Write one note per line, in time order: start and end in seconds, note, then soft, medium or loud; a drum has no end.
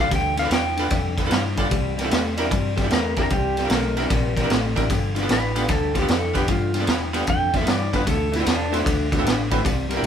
0.00 0.10 C2 medium
0.00 0.13 F5 medium
0.10 0.50 D2 medium
0.10 0.35 G2 medium
0.10 0.35 D3 medium
0.10 kick loud
0.10 snare soft
0.10 ride medium
0.15 0.39 G5 medium
0.37 0.49 G2 medium
0.37 0.50 D3 medium
0.37 0.42 A4 soft
0.37 0.42 D5 soft
0.37 0.52 F5 medium
0.37 snare soft
0.37 ride medium
0.45 0.52 D4 medium
0.45 0.52 F4 medium
0.45 0.52 A4 medium
0.45 0.52 B4 medium
0.50 0.90 E2 medium
0.50 0.74 G2 medium
0.50 0.75 E3 medium
0.50 1.68 G5 medium
0.50 snare loud
0.50 ride medium
0.77 0.88 G2 medium
0.77 0.88 D3 medium
0.77 0.85 D4 medium
0.77 0.85 F4 medium
0.77 0.85 A4 medium
0.77 0.85 B4 medium
0.77 snare soft
0.77 ride medium
0.89 1.30 F2 medium
0.89 1.14 G2 medium
0.89 1.14 D3 medium
0.89 kick loud
0.89 snare soft
0.89 ride medium
1.16 1.28 G2 medium
1.16 1.29 D3 medium
1.16 1.22 A4 soft
1.16 1.22 B4 medium
1.16 kick medium
1.16 snare soft
1.16 ride medium
1.26 1.54 G2 medium
1.26 1.32 D4 medium
1.26 1.33 F4 medium
1.26 1.33 A4 medium
1.26 1.32 B4 medium
1.30 1.70 G2 medium
1.30 1.54 E3 medium
1.30 snare loud
1.30 ride medium
1.55 1.69 G2 medium
1.55 1.69 D3 medium
1.55 1.65 D4 medium
1.55 1.65 F4 medium
1.55 1.65 A4 medium
1.55 1.65 D5 medium
1.55 kick medium
1.55 snare soft
1.55 ride medium
1.69 2.10 C2 medium
1.69 1.94 C3 medium
1.69 1.94 G3 medium
1.69 kick loud
1.69 ride medium
1.97 2.09 C3 medium
1.97 2.09 G3 medium
1.97 2.01 G4 soft
1.97 2.01 A#4 medium
1.97 snare soft
1.97 ride medium
2.04 2.11 D4 medium
2.04 2.11 E4 medium
2.04 2.11 G4 medium
2.04 2.11 A4 medium
2.11 2.50 E2 medium
2.11 2.35 C3 medium
2.11 2.35 A3 medium
2.11 snare loud
2.11 ride medium
2.37 2.49 C3 medium
2.37 2.49 G3 medium
2.37 2.44 D4 medium
2.37 2.44 E4 medium
2.37 2.45 G4 medium
2.37 2.45 A#4 loud
2.37 snare soft
2.37 ride medium
2.51 2.90 G2 medium
2.51 2.74 C3 medium
2.51 2.75 G3 loud
2.51 kick loud
2.51 ride medium
2.76 2.89 C3 medium
2.76 2.89 G3 medium
2.76 2.80 G4 soft
2.76 2.80 A4 medium
2.76 kick medium
2.76 snare soft
2.76 ride medium
2.84 2.91 D4 medium
2.84 2.91 E4 medium
2.84 2.91 G4 medium
2.84 2.91 A4 medium
2.90 3.30 E2 medium
2.90 3.14 C3 medium
2.90 3.14 A3 medium
2.90 3.18 A#4 medium
2.90 snare loud
2.90 ride medium
3.16 3.29 C3 medium
3.16 3.29 G3 medium
3.16 3.24 D4 medium
3.16 3.24 E4 medium
3.16 3.24 G4 medium
3.16 3.24 A#4 medium
3.16 3.31 A#4 medium
3.16 kick medium
3.16 snare soft
3.16 ride medium
3.30 3.69 C2 medium
3.30 3.55 C3 medium
3.30 3.55 G3 medium
3.30 3.70 G4 medium
3.30 kick loud
3.30 ride medium
3.57 3.70 C3 medium
3.57 3.70 G3 medium
3.57 3.61 G4 soft
3.57 3.61 A4 soft
3.57 snare soft
3.57 ride medium
3.65 3.71 D4 medium
3.65 3.71 E4 medium
3.65 3.71 G4 medium
3.65 3.71 A#4 medium
3.70 4.09 B1 medium
3.70 3.95 C3 medium
3.70 3.95 A3 medium
3.70 4.49 A#4 medium
3.70 snare loud
3.70 ride medium
3.97 4.10 C3 medium
3.97 4.10 G3 medium
3.97 4.03 D4 medium
3.97 4.04 E4 medium
3.97 4.03 G4 medium
3.97 4.04 A#4 medium
3.97 snare soft
3.97 ride medium
4.10 4.49 A#1 medium
4.10 4.34 C3 medium
4.10 4.35 G3 medium
4.10 kick loud
4.10 snare soft
4.10 ride medium
4.37 4.49 C3 medium
4.37 4.49 G3 medium
4.37 4.40 G4 medium
4.37 4.40 A#4 medium
4.37 kick medium
4.37 snare soft
4.37 ride medium
4.43 4.50 D4 medium
4.43 4.50 E4 medium
4.43 4.50 G4 medium
4.43 4.50 A#4 medium
4.50 4.89 A1 medium
4.50 4.74 C3 medium
4.50 4.74 A3 medium
4.50 snare loud
4.50 ride medium
4.76 4.89 C3 medium
4.76 4.89 G3 medium
4.76 4.83 D4 medium
4.76 4.83 E4 medium
4.76 4.83 G4 medium
4.76 4.83 A#4 medium
4.76 kick medium
4.76 snare soft
4.76 ride medium
4.90 5.28 G1 medium
4.90 5.13 G2 medium
4.90 5.13 D3 medium
4.90 kick loud
4.90 snare soft
4.90 ride medium
5.15 5.26 G2 medium
5.15 5.28 D3 medium
5.15 5.19 F4 soft
5.15 5.19 A4 medium
5.15 snare soft
5.15 ride medium
5.22 5.29 B3 medium
5.22 5.29 D4 medium
5.22 5.29 F4 medium
5.22 5.29 A4 medium
5.28 5.68 A1 medium
5.28 5.52 G2 medium
5.28 5.53 E3 medium
5.28 snare loud
5.28 ride medium
5.32 5.69 B4 medium
5.55 5.66 G2 medium
5.55 5.67 D3 medium
5.55 5.62 B3 medium
5.55 5.62 D4 medium
5.55 5.62 F4 medium
5.55 5.62 G4 medium
5.55 snare soft
5.55 ride medium
5.68 6.07 D2 medium
5.68 5.92 G2 medium
5.68 5.92 D3 medium
5.68 kick loud
5.68 snare soft
5.68 ride medium
5.72 5.96 A4 medium
5.94 6.07 G2 medium
5.94 6.07 D3 medium
5.94 5.98 F4 soft
5.94 5.98 A4 soft
5.94 kick medium
5.94 snare soft
5.94 ride medium
5.99 6.08 B3 medium
5.99 6.08 D4 medium
5.99 6.08 F4 medium
5.99 6.10 G4 medium
5.99 6.08 A4 medium
6.08 6.47 F2 medium
6.08 6.32 G2 medium
6.08 6.33 E3 medium
6.08 snare loud
6.08 ride medium
6.12 6.36 A4 medium
6.33 6.47 G2 medium
6.33 6.47 D3 medium
6.33 6.41 B3 medium
6.33 6.41 D4 medium
6.33 6.41 F4 medium
6.33 6.49 G4 medium
6.33 6.41 B4 medium
6.33 kick medium
6.33 snare soft
6.33 ride medium
6.48 6.86 G2 medium
6.48 6.72 G2 medium
6.48 6.72 D3 loud
6.48 6.88 F4 loud
6.48 kick loud
6.48 snare soft
6.48 ride medium
6.74 6.86 G2 medium
6.74 6.86 D3 medium
6.74 6.78 F4 soft
6.74 6.78 A4 soft
6.74 snare soft
6.74 ride medium
6.80 6.87 B3 medium
6.80 6.87 D4 medium
6.80 6.87 F4 medium
6.80 6.88 A4 medium
6.87 7.26 E2 medium
6.87 7.12 G2 medium
6.87 7.12 E3 medium
6.87 snare loud
6.87 ride medium
7.13 7.26 G2 medium
7.13 7.26 D3 medium
7.13 7.20 B3 medium
7.13 7.20 D4 medium
7.13 7.20 F4 medium
7.13 7.21 G4 medium
7.13 snare soft
7.13 ride medium
7.27 7.66 F2 medium
7.27 7.51 G2 medium
7.27 7.51 D3 medium
7.27 7.54 G5 loud
7.27 kick loud
7.27 ride medium
7.53 7.65 G2 medium
7.53 7.65 D3 medium
7.53 7.57 F4 soft
7.53 7.57 A4 soft
7.53 7.68 E5 medium
7.53 kick medium
7.53 snare soft
7.53 ride medium
7.61 7.67 B3 medium
7.61 7.67 D4 medium
7.61 7.68 F4 medium
7.61 7.68 A4 medium
7.66 7.90 G2 medium
7.66 8.05 G2 medium
7.66 7.90 E3 medium
7.66 snare loud
7.66 ride medium
7.71 7.94 D5 medium
7.92 8.05 G2 medium
7.92 8.05 D3 medium
7.92 8.00 B3 medium
7.92 8.00 D4 medium
7.92 8.00 F4 medium
7.92 8.00 B4 medium
7.92 8.07 B4 medium
7.92 kick medium
7.92 snare soft
7.92 ride medium
8.06 8.45 D2 medium
8.06 8.30 D3 medium
8.06 8.30 A3 medium
8.06 8.33 A4 medium
8.06 kick loud
8.06 snare soft
8.06 ride medium
8.32 8.42 D3 medium
8.32 8.44 A3 medium
8.32 8.36 F#4 soft
8.32 8.36 A4 soft
8.32 snare soft
8.32 ride medium
8.36 8.46 C4 medium
8.36 8.47 E4 medium
8.40 8.68 D3 medium
8.40 8.46 E4 medium
8.40 8.46 F#4 medium
8.40 8.47 B4 medium
8.44 8.85 E2 medium
8.44 8.68 B3 medium
8.44 snare loud
8.44 ride medium
8.50 8.73 D4 medium
8.70 8.82 D3 medium
8.70 8.83 A3 medium
8.70 8.79 C4 medium
8.70 8.79 E4 medium
8.70 8.79 F#4 medium
8.70 8.79 C5 medium
8.70 ride medium
8.75 9.51 D4 medium
8.75 snare soft
8.83 9.24 D2 medium
8.83 9.08 D3 medium
8.83 9.08 A3 medium
8.83 kick loud
8.83 ride medium
8.88 snare soft
9.11 9.22 D3 medium
9.11 9.23 A3 medium
9.11 9.15 F#4 soft
9.11 9.15 A4 soft
9.11 kick medium
9.11 snare soft
9.11 ride medium
9.19 9.25 C4 medium
9.19 9.25 E4 medium
9.19 9.25 F#4 medium
9.19 9.25 A4 medium
9.23 9.63 A1 medium
9.23 9.47 D3 medium
9.23 9.47 B3 medium
9.23 ride medium
9.28 snare loud
9.50 9.63 D3 medium
9.50 9.63 A3 medium
9.50 9.58 C4 medium
9.50 9.58 E4 medium
9.50 9.58 F#4 medium
9.50 9.58 B4 medium
9.50 kick medium
9.50 snare soft
9.50 ride medium
9.64 10.02 C2 medium
9.64 9.87 C3 medium
9.64 9.88 G3 medium
9.64 kick loud
9.64 snare soft
9.64 ride medium
9.89 10.02 C3 medium
9.89 10.02 G3 medium
9.89 9.93 G4 medium
9.89 9.94 A#4 medium
9.89 snare soft
9.89 ride medium
9.97 10.04 D4 medium
9.97 10.04 E4 medium
9.97 10.03 G4 medium
9.97 10.03 A#4 medium
10.03 10.06 B1 medium
10.03 10.06 C3 medium